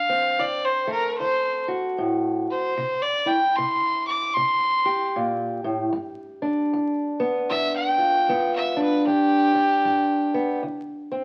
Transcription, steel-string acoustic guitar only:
0.00 0.33 D2 medium
0.09 2.73 C4 medium
0.39 1.12 D2 medium
0.87 2.73 A3 medium
1.20 1.92 D2 medium
1.68 2.74 F#4 medium
1.98 2.45 A2 medium
2.77 3.50 C3 medium
3.26 5.89 E4 medium
3.58 4.29 C3 medium
4.37 5.08 C3 medium
4.85 7.98 G4 medium
5.16 5.62 A#2 medium
5.64 5.92 A2 medium
5.93 6.65 G2 medium
6.42 8.76 D4 medium
6.73 7.44 G2 medium
7.20 8.28 B3 medium
7.51 8.22 G2 medium
7.98 9.03 F4 medium
8.29 9.00 G2 medium
8.29 9.03 B3 medium
8.77 9.55 D4 medium
9.07 9.79 G2 medium
9.55 10.60 D4 medium
9.85 10.57 G2 medium
10.34 10.60 B3 medium
10.63 11.24 D2 medium
11.12 11.24 C4 medium

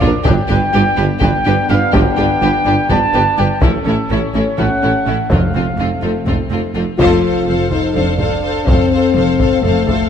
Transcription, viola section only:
0.02 0.10 D4 medium
0.26 0.34 D4 medium
0.49 0.57 D4 medium
0.74 0.82 D4 medium
0.96 1.04 D4 medium
1.21 1.29 D4 medium
1.45 1.53 D4 medium
1.69 1.77 D4 medium
1.93 2.01 D4 medium
2.18 2.26 D4 medium
2.42 2.50 D4 medium
2.66 2.74 D4 medium
2.89 2.97 D4 medium
3.13 3.21 D4 medium
3.38 3.46 D4 soft
3.61 3.69 C#4 medium
3.85 3.93 C#4 medium
4.10 4.18 C#4 medium
4.34 4.42 C#4 soft
4.58 4.66 C#4 soft
4.82 4.90 C#4 soft
5.06 5.14 C#4 soft
5.30 5.38 C4 soft
5.55 5.63 C4 soft
5.80 5.88 C4 soft
6.03 6.11 C4 soft
6.27 6.35 C4 soft
6.51 6.59 C4 soft
6.76 6.84 C4 soft
6.99 7.22 A4 medium
7.24 7.46 A4 soft
7.48 7.71 A4 soft
7.72 7.95 A4 soft
7.96 8.19 A4 soft
8.20 8.43 A4 soft
8.44 8.67 A4 soft
8.69 8.91 A4 soft
8.92 9.15 A4 soft
9.16 9.39 A4 soft
9.40 9.62 A4 soft
9.63 9.86 A4 soft
9.87 10.09 A4 soft

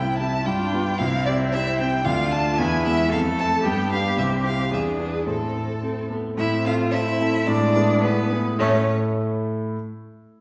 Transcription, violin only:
0.00 0.18 G5 loud
0.18 0.47 A5 loud
0.45 1.00 G5 loud
0.98 1.25 F5 loud
1.25 1.33 D5 loud
1.52 1.78 E5 loud
1.79 2.07 G5 loud
2.05 2.33 F5 loud
2.32 2.60 A5 loud
2.58 2.85 G#5 loud
2.85 3.11 E5 loud
3.12 3.20 F5 loud
3.38 3.67 A5 loud
3.65 3.92 G5 loud
3.92 4.18 F5 loud
4.18 4.26 E5 loud
4.46 4.72 F5 loud
4.74 4.82 E5 loud
5.01 5.27 B4 medium
5.27 6.09 A4 medium
6.38 6.64 E5 loud
6.66 6.74 F5 loud
6.91 7.48 E5 loud
7.47 8.02 D5 loud
8.03 8.59 B4 loud
8.59 8.91 C#5 loud

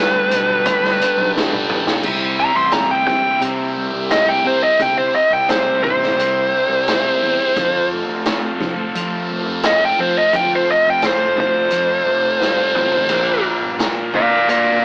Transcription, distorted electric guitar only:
0.00 0.28 G2 medium
0.00 0.29 D3 medium
0.00 0.29 G3 loud
0.30 1.33 D3 medium
0.30 1.32 G3 medium
0.34 1.32 G2 medium
1.34 2.01 G2 medium
1.34 2.02 D3 medium
1.38 2.03 G3 medium
2.02 3.76 C3 medium
2.37 3.74 G3 medium
2.72 3.42 C4 medium
3.07 4.80 E3 medium
3.42 4.44 C4 medium
3.76 5.12 G3 medium
4.11 5.84 E4 medium
4.45 5.47 C4 medium
4.79 6.52 C3 medium
5.13 6.52 G3 medium
5.48 6.17 C4 medium
5.83 7.56 E3 medium
6.18 7.22 C4 medium
6.53 7.57 G3 medium
6.88 7.57 E4 medium
7.23 8.25 C4 medium
7.58 8.61 F3 medium
7.92 9.30 A3 medium
8.26 8.95 C4 medium
8.62 10.33 F3 medium
8.96 9.97 C4 medium
9.31 10.66 A3 medium
9.64 12.40 F4 medium
9.98 11.02 C4 medium
10.33 11.36 F3 medium
10.67 12.05 A3 medium
11.03 11.70 C4 medium
11.36 13.44 F3 medium
11.71 12.74 C4 medium
12.06 13.10 A3 medium
12.40 14.85 F4 medium
12.75 13.10 C4 medium
13.10 14.84 A#2 medium
13.44 14.84 F3 medium
13.80 14.49 A#3 medium
14.14 14.85 D3 medium
14.50 14.85 A#3 medium

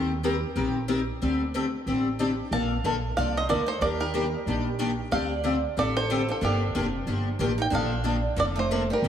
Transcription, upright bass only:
0.00 0.42 D#2 medium
0.55 1.08 A#1 medium
1.22 1.74 D2 medium
1.86 2.38 A1 medium
2.51 2.77 A#1 medium
2.84 3.12 A#1 medium
3.17 3.45 C2 medium
3.50 3.77 D2 medium
3.81 4.33 D#2 medium
4.46 4.98 A#1 medium
5.12 5.64 D2 medium
5.77 6.29 A1 medium
6.41 6.68 G1 medium
6.75 7.02 F1 medium
7.06 7.34 G1 medium
7.39 7.67 A1 medium
7.72 8.24 A#1 medium
8.36 8.89 F1 medium
9.02 9.08 G1 medium

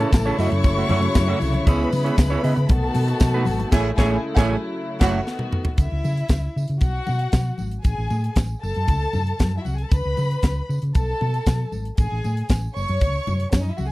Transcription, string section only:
0.00 2.67 C#3 medium
0.00 0.38 E3 medium
0.00 1.64 A3 medium
0.00 2.67 E4 medium
0.39 1.66 F#3 medium
1.66 2.68 G#3 medium
1.66 2.68 B3 medium
2.69 3.71 D#3 medium
2.69 5.24 A3 medium
2.69 3.71 B3 medium
2.69 3.71 F#4 loud
3.71 4.48 C#3 medium
3.71 4.48 G#3 medium
3.71 5.25 E4 medium
4.49 5.26 C#3 medium
4.49 5.26 F#3 medium
5.26 5.78 D#3 medium
5.26 5.78 A3 medium
5.26 5.78 B3 medium
5.26 5.78 F#4 medium

